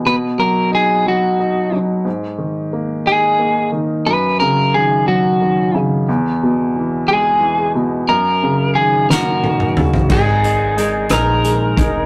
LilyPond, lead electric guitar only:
\new Staff \with { instrumentName = "Lead electric guitar" } { \time 6/8 \key gis \minor \tempo 4. = 60 b'8 ais'8 gis'8 fis'4 r8 | r4. gis'4 r8 | b'8 ais'8 gis'8 fis'4 r8 | r4. gis'4 r8 |
ais'4 gis'8 <fis' ais'>4. | gis'4. ais'4. | }